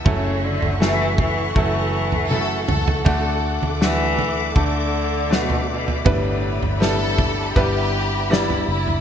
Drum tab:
SD |----o-----------|----o-------o---|----o-------o---|
T1 |------------o---|----------------|----------------|
T2 |--------------o-|----------------|----------------|
FT |o--o--o-o--o---o|o--o--o-o----o-o|o--o--o-o----o-o|
BD |o-----o-o-------|o-------o-------|o-----o-o-------|